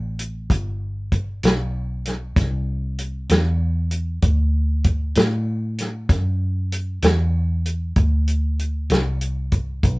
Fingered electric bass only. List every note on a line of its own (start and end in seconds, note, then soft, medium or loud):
0.00 0.47 A1 medium
0.50 1.40 G1 medium
1.44 2.34 B1 medium
2.36 3.27 C2 medium
3.30 4.20 E2 medium
4.22 5.13 D2 medium
5.16 6.07 A2 medium
6.10 7.00 F#2 medium
7.03 7.94 E2 medium
7.97 8.87 D2 medium
8.90 9.81 C2 medium
9.84 9.99 B1 medium